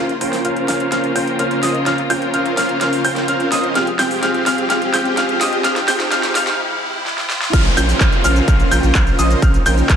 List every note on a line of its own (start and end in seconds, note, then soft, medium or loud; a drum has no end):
0.00 3.72 C#3 medium
0.00 3.72 A#3 medium
0.00 7.49 C4 medium
0.00 0.11 C#4 medium
0.00 0.11 F4 medium
0.00 3.72 F4 medium
0.00 0.11 A#4 medium
0.00 0.11 C5 medium
0.00 0.11 F5 medium
0.00 0.11 F6 medium
0.00 riser medium
0.09 closed hi-hat soft
0.21 0.42 C#4 medium
0.21 0.42 F4 medium
0.21 0.42 A#4 medium
0.21 0.42 C5 medium
0.21 0.42 G5 loud
0.21 0.42 G6 loud
0.21 open hi-hat loud
0.33 snare soft
0.33 open hi-hat medium
0.45 0.65 C#4 medium
0.45 0.65 F4 medium
0.45 0.65 A#4 medium
0.45 0.65 C5 medium
0.45 0.65 F5 medium
0.45 0.66 F6 medium
0.45 closed hi-hat medium
0.56 closed hi-hat soft
0.68 0.89 C#4 medium
0.68 0.89 F4 medium
0.68 0.89 A#4 medium
0.68 0.89 C5 medium
0.68 0.89 F5 medium
0.68 0.89 F6 medium
0.68 snare medium
0.68 open hi-hat loud
0.80 closed hi-hat soft
0.92 1.13 C#4 medium
0.92 1.13 F4 medium
0.92 1.13 A#4 medium
0.92 1.13 C5 medium
0.92 1.13 F5 medium
0.92 1.13 F6 medium
0.92 snare medium
0.92 closed hi-hat loud
1.04 closed hi-hat soft
1.15 1.36 C#4 medium
1.15 1.36 F4 medium
1.15 1.36 A#4 medium
1.15 1.36 C5 medium
1.15 1.36 G5 medium
1.15 1.36 G6 medium
1.15 open hi-hat loud
1.27 closed hi-hat soft
1.39 1.60 C#4 medium
1.39 1.60 F4 medium
1.39 1.60 A#4 medium
1.39 1.60 C5 medium
1.39 1.60 F5 medium
1.39 1.60 F6 medium
1.39 closed hi-hat medium
1.51 closed hi-hat soft
1.63 1.83 C#4 medium
1.63 1.83 F4 medium
1.63 1.83 A#4 medium
1.63 1.83 C5 medium
1.63 1.84 D#5 medium
1.63 1.84 D#6 medium
1.63 snare medium
1.63 open hi-hat loud
1.75 closed hi-hat soft
1.86 2.00 C#4 medium
1.86 2.00 F4 medium
1.86 2.00 A#4 medium
1.86 2.00 C5 medium
1.86 2.00 F5 loud
1.86 2.00 F6 medium
1.86 snare medium
1.86 closed hi-hat medium
1.98 closed hi-hat soft
2.10 2.31 C#4 medium
2.10 2.31 F4 medium
2.10 2.31 A#4 medium
2.10 2.31 C5 medium
2.10 2.31 G5 loud
2.10 2.31 G6 loud
2.10 open hi-hat loud
2.22 closed hi-hat soft
2.34 2.54 C#4 medium
2.34 2.54 F4 medium
2.34 2.54 A#4 medium
2.34 2.54 C5 medium
2.34 2.54 F5 medium
2.34 2.54 F6 medium
2.34 closed hi-hat medium
2.46 closed hi-hat soft
2.57 2.78 C#4 medium
2.57 2.78 F4 medium
2.57 2.78 A#4 medium
2.57 2.78 C5 medium
2.57 2.78 F5 loud
2.57 2.78 F6 medium
2.57 snare medium
2.57 open hi-hat loud
2.69 closed hi-hat soft
2.81 3.02 C#4 medium
2.81 3.02 F4 medium
2.81 3.02 A#4 medium
2.81 3.02 C5 medium
2.81 3.02 F5 medium
2.81 3.02 F6 medium
2.81 snare medium
2.81 closed hi-hat medium
2.93 open hi-hat medium
3.04 3.25 C#4 medium
3.04 3.25 F4 medium
3.04 3.25 A#4 medium
3.04 3.25 C5 medium
3.04 3.25 G5 loud
3.04 3.25 G6 medium
3.04 open hi-hat loud
3.16 snare medium
3.16 closed hi-hat soft
3.28 3.49 C#4 medium
3.28 3.49 F4 medium
3.28 3.49 A#4 medium
3.28 3.49 C5 medium
3.28 3.49 F5 medium
3.28 3.49 F6 medium
3.28 closed hi-hat medium
3.40 closed hi-hat soft
3.52 3.73 C#4 medium
3.52 3.73 F4 medium
3.52 3.73 A#4 medium
3.52 3.73 C5 medium
3.52 3.73 D#5 medium
3.52 3.73 D#6 medium
3.52 snare medium
3.52 open hi-hat loud
3.64 closed hi-hat soft
3.75 7.50 F3 medium
3.75 7.50 G#3 medium
3.75 3.89 C4 medium
3.75 3.89 F4 medium
3.75 3.89 G4 medium
3.75 7.50 G4 medium
3.75 3.89 G#4 medium
3.75 3.89 F5 loud
3.75 3.89 F6 medium
3.75 snare medium
3.75 closed hi-hat medium
3.87 closed hi-hat soft
3.99 4.20 C4 medium
3.99 4.20 F4 medium
3.99 4.20 G4 medium
3.99 4.20 G#4 medium
3.99 4.20 G5 loud
3.99 4.20 G6 loud
3.99 snare medium
3.99 open hi-hat loud
4.11 open hi-hat medium
4.23 4.43 C4 medium
4.23 4.43 F4 medium
4.23 4.43 G4 medium
4.23 4.43 G#4 medium
4.23 4.43 F5 medium
4.23 4.43 F6 medium
4.23 snare medium
4.23 closed hi-hat medium
4.34 closed hi-hat soft
4.46 4.67 C4 medium
4.46 4.67 F4 medium
4.46 4.67 G4 medium
4.46 4.67 G#4 medium
4.46 4.67 F5 loud
4.46 4.67 F6 loud
4.46 snare medium
4.46 open hi-hat loud
4.58 closed hi-hat soft
4.70 4.91 C4 medium
4.70 4.91 F4 medium
4.70 4.91 G4 medium
4.70 4.91 G#4 medium
4.70 4.91 F5 medium
4.70 4.91 F6 medium
4.70 snare medium
4.70 closed hi-hat medium
4.82 closed hi-hat soft
4.93 5.14 C4 medium
4.93 5.14 F4 medium
4.93 5.14 G4 medium
4.93 5.14 G#4 medium
4.93 5.14 G5 medium
4.93 5.14 G6 medium
4.93 snare medium
4.93 open hi-hat loud
5.05 closed hi-hat soft
5.17 5.38 C4 medium
5.17 5.38 F4 medium
5.17 5.38 G4 medium
5.17 5.38 G#4 medium
5.17 5.38 F5 medium
5.17 5.38 F6 medium
5.17 snare medium
5.17 closed hi-hat medium
5.29 closed hi-hat soft
5.41 5.61 C4 medium
5.41 5.61 F4 medium
5.41 5.61 G4 medium
5.41 5.61 G#4 medium
5.41 5.61 D#5 medium
5.41 5.62 D#6 medium
5.41 snare medium
5.41 open hi-hat loud
5.53 closed hi-hat soft
5.64 5.78 C4 medium
5.64 5.78 F4 medium
5.64 5.78 G4 medium
5.64 5.78 G#4 medium
5.64 5.78 F5 loud
5.64 5.78 F6 loud
5.64 snare medium
5.64 closed hi-hat medium
5.76 snare medium
5.76 closed hi-hat soft
5.88 6.09 C4 medium
5.88 6.09 F4 medium
5.88 6.09 G4 medium
5.88 6.09 G#4 medium
5.88 6.09 G5 loud
5.88 6.09 G6 loud
5.88 snare loud
5.88 open hi-hat loud
6.00 snare medium
6.00 closed hi-hat soft
6.11 6.32 C4 medium
6.11 6.32 F4 medium
6.11 6.32 G4 medium
6.11 6.32 G#4 medium
6.11 6.32 F5 medium
6.11 6.32 F6 medium
6.11 snare medium
6.11 closed hi-hat medium
6.23 snare medium
6.23 closed hi-hat soft
6.35 6.56 C4 medium
6.35 6.56 F4 medium
6.35 6.56 G4 medium
6.35 6.56 G#4 medium
6.35 6.56 F5 loud
6.35 6.56 F6 loud
6.35 snare loud
6.35 open hi-hat loud
6.47 snare medium
6.47 closed hi-hat soft
7.06 snare medium
7.18 snare medium
7.30 snare medium
7.42 snare medium
7.53 7.70 A#1 loud
7.53 9.96 C#3 medium
7.53 9.96 A#3 medium
7.53 9.96 C4 medium
7.53 7.66 C#4 medium
7.53 7.66 F4 medium
7.53 9.40 F4 medium
7.53 7.66 A#4 medium
7.53 7.66 C5 medium
7.53 7.66 F5 loud
7.53 7.67 F6 loud
7.53 kick loud
7.53 closed hi-hat loud
7.53 crash loud
7.53 downlifter medium
7.53 shaker soft
7.65 closed hi-hat soft
7.65 shaker soft
7.77 7.93 A#1 medium
7.77 7.98 C#4 medium
7.77 7.98 F4 medium
7.77 7.98 A#4 medium
7.77 7.98 C5 medium
7.77 7.98 G5 loud
7.77 7.98 G6 loud
7.77 open hi-hat loud
7.77 shaker medium
7.89 open hi-hat medium
7.89 shaker soft
8.00 8.09 A#1 medium
8.00 8.21 C#4 medium
8.00 8.21 F4 medium
8.00 8.21 A#4 medium
8.00 8.21 C5 medium
8.00 8.21 F5 medium
8.00 8.21 F6 medium
8.00 kick loud
8.00 clap loud
8.00 closed hi-hat medium
8.00 shaker soft
8.12 closed hi-hat soft
8.12 shaker soft
8.24 8.41 A#1 medium
8.24 8.45 C#4 medium
8.24 8.45 F4 medium
8.24 8.45 A#4 medium
8.24 8.45 C5 medium
8.24 8.45 F5 loud
8.24 8.45 F6 loud
8.24 open hi-hat loud
8.24 shaker medium
8.36 closed hi-hat soft
8.36 shaker soft
8.48 8.64 A#1 loud
8.48 8.69 C#4 medium
8.48 8.69 F4 medium
8.48 8.69 A#4 medium
8.48 8.69 C5 medium
8.48 8.69 F5 medium
8.48 8.69 F6 medium
8.48 kick loud
8.48 closed hi-hat loud
8.48 shaker soft
8.60 closed hi-hat soft
8.60 shaker soft
8.71 8.80 A#1 medium
8.71 8.92 C#4 medium
8.71 8.92 F4 medium
8.71 8.92 A#4 medium
8.71 8.92 C5 medium
8.71 8.92 G5 medium
8.71 8.92 G6 loud
8.71 open hi-hat loud
8.71 shaker medium
8.83 8.91 A#1 medium
8.83 closed hi-hat soft
8.83 shaker soft
8.95 9.11 A#1 medium
8.95 9.16 C#4 medium
8.95 9.16 F4 medium
8.95 9.16 A#4 medium
8.95 9.16 C5 medium
8.95 9.16 F5 medium
8.95 9.16 F6 medium
8.95 kick loud
8.95 clap loud
8.95 closed hi-hat loud
8.95 shaker soft
9.07 closed hi-hat soft
9.07 shaker soft
9.19 9.35 A#1 medium
9.19 9.39 C#4 medium
9.19 9.40 F4 medium
9.19 9.39 A#4 medium
9.19 9.40 C5 medium
9.19 9.39 D#5 medium
9.19 9.40 D#6 medium
9.19 open hi-hat loud
9.19 shaker medium
9.30 closed hi-hat soft
9.30 shaker soft
9.42 9.59 A#1 loud
9.42 9.56 C#4 medium
9.42 9.96 D#4 medium
9.42 9.56 F4 medium
9.42 9.56 A#4 medium
9.42 9.56 C5 medium
9.42 9.56 F5 loud
9.42 9.56 F6 medium
9.42 kick loud
9.42 closed hi-hat loud
9.42 shaker soft
9.54 closed hi-hat soft
9.54 shaker soft
9.66 9.82 A#1 medium
9.66 9.87 C#4 loud
9.66 9.87 F4 medium
9.66 9.87 A#4 medium
9.66 9.87 C5 medium
9.66 9.87 G5 loud
9.66 9.87 G6 loud
9.66 open hi-hat loud
9.66 shaker medium
9.78 closed hi-hat soft
9.78 shaker soft
9.89 9.96 A#1 loud
9.89 9.96 C#4 medium
9.89 9.96 F4 medium
9.89 9.96 A#4 medium
9.89 9.96 C5 medium
9.89 9.96 F5 medium
9.89 9.96 F6 medium
9.89 kick loud
9.89 clap loud
9.89 closed hi-hat medium
9.89 shaker soft